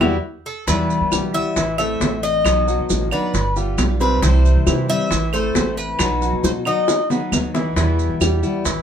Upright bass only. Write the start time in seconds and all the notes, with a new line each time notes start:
0.00 E2
0.67 E2
1.01 E3
1.12 B1
1.56 A1
2.00 A1
2.45 B1
2.78 B2
2.90 A1
3.34 G1
3.78 B1
4.22 C2
4.56 C3
4.67 C3
5.11 A1
5.55 A1
5.99 B1
6.33 B2
6.44 B2
7.32 D#2
7.76 E2
8.09 E3
8.21 E2
8.65 A1